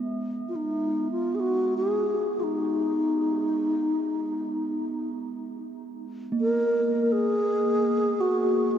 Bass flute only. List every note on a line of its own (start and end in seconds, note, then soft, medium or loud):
0.49 0.57 F4 medium
0.56 1.11 D#4 medium
1.11 1.36 F4 medium
1.35 1.41 G#4 medium
1.40 1.76 F#4 medium
1.77 2.41 G#4 medium
2.40 5.10 D#4 medium
2.40 2.45 F4 soft
6.41 7.06 A#4 medium
7.06 7.14 A#4 medium
7.12 8.22 G#4 loud
8.21 8.73 F#4 medium
8.71 8.78 D#4 medium